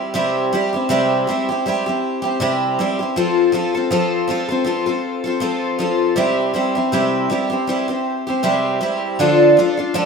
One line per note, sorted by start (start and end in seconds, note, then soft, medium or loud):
0.00 0.14 G3 medium
0.00 0.14 C4 medium
0.00 0.14 E4 medium
0.00 0.15 G4 medium
0.14 0.52 C3 medium
0.14 0.51 G3 medium
0.14 0.52 C4 medium
0.14 0.52 E4 medium
0.14 0.53 G4 medium
0.53 0.73 G3 medium
0.53 0.73 C4 medium
0.53 0.73 E4 medium
0.53 0.72 G4 medium
0.73 0.89 C4 soft
0.73 0.89 E4 medium
0.73 0.90 G4 soft
0.89 1.27 C3 medium
0.89 1.26 G3 medium
0.89 1.27 C4 medium
0.89 1.28 E4 loud
0.89 1.28 G4 loud
1.27 1.48 G3 medium
1.27 1.49 C4 medium
1.27 1.49 E4 medium
1.27 1.48 G4 medium
1.49 1.65 C4 medium
1.49 1.66 E4 medium
1.49 1.65 G4 medium
1.66 1.86 G3 medium
1.66 1.86 C4 medium
1.66 1.87 E4 medium
1.66 1.85 G4 medium
1.86 2.24 C4 soft
1.86 2.23 E4 medium
1.86 2.21 G4 medium
2.22 2.40 C4 soft
2.22 2.41 E4 medium
2.22 2.40 G4 medium
2.40 2.78 C3 medium
2.40 2.78 G3 medium
2.40 2.78 C4 loud
2.40 2.79 E4 loud
2.40 2.79 G4 loud
2.79 2.99 G3 medium
2.79 3.00 C4 medium
2.79 2.99 E4 medium
2.79 2.98 G4 medium
2.99 3.16 C4 soft
2.99 3.17 E4 soft
2.99 3.16 G4 soft
3.16 3.51 F3 medium
3.16 3.52 C4 medium
3.16 3.53 F4 medium
3.16 3.54 A4 medium
3.52 3.74 F3 medium
3.52 3.74 C4 medium
3.52 3.74 F4 medium
3.52 3.73 A4 medium
3.75 3.90 C4 medium
3.75 3.91 F4 soft
3.75 3.91 A4 medium
3.91 4.26 F3 medium
3.91 4.27 C4 loud
3.91 4.29 F4 loud
3.91 4.30 A4 medium
4.28 4.49 F3 medium
4.28 4.50 C4 medium
4.28 4.49 F4 medium
4.28 4.47 A4 medium
4.49 4.64 C4 medium
4.49 4.65 F4 medium
4.49 4.66 A4 medium
4.64 4.86 F3 medium
4.64 4.87 C4 medium
4.64 4.86 F4 medium
4.64 4.85 A4 medium
4.86 5.26 C4 medium
4.86 5.24 F4 medium
4.86 5.23 A4 medium
5.24 5.40 C4 medium
5.24 5.41 F4 medium
5.24 5.41 A4 medium
5.40 5.77 F3 medium
5.40 5.78 C4 medium
5.40 5.79 F4 medium
5.40 5.80 A4 loud
5.79 6.16 F3 medium
5.79 6.16 C4 medium
5.79 6.17 F4 medium
5.79 6.17 A4 medium
6.16 6.54 C3 medium
6.16 6.52 G3 medium
6.16 6.53 C4 medium
6.16 6.55 E4 loud
6.16 6.55 G4 loud
6.54 6.75 G3 medium
6.54 6.76 C4 medium
6.54 6.75 E4 medium
6.54 6.74 G4 medium
6.75 6.92 C4 soft
6.75 6.92 E4 medium
6.75 6.92 G4 medium
6.92 7.30 C3 medium
6.92 7.28 G3 medium
6.92 7.29 C4 medium
6.92 7.30 E4 medium
6.92 7.31 G4 medium
7.30 7.51 G3 medium
7.30 7.51 C4 medium
7.30 7.50 E4 medium
7.30 7.48 G4 medium
7.50 7.67 C4 soft
7.50 7.68 E4 medium
7.50 7.67 G4 medium
7.67 7.89 G3 medium
7.67 7.89 C4 medium
7.67 7.88 E4 medium
7.67 7.87 G4 medium
7.88 8.27 C4 soft
7.88 8.27 E4 medium
7.88 8.26 G4 medium
8.27 8.42 C4 medium
8.27 8.43 E4 medium
8.27 8.43 G4 medium
8.43 8.81 C3 medium
8.43 8.79 G3 medium
8.43 8.80 C4 medium
8.43 8.81 E4 medium
8.43 8.82 G4 medium
8.81 9.19 G3 medium
8.81 9.19 C4 medium
8.81 9.20 E4 medium
8.81 9.20 G4 medium
9.19 9.57 D3 medium
9.19 9.56 F3 loud
9.19 9.57 D4 medium
9.19 9.58 F4 medium
9.19 9.58 A4 loud
9.57 9.77 F3 medium
9.57 9.78 D4 medium
9.57 9.78 F4 medium
9.57 9.76 A4 medium
9.77 9.94 D4 soft
9.77 9.94 F4 medium
9.77 9.94 A4 medium
9.94 10.05 D3 medium
9.94 10.05 F3 medium
9.94 10.05 D4 medium
9.94 10.05 F4 loud
9.94 10.05 A4 loud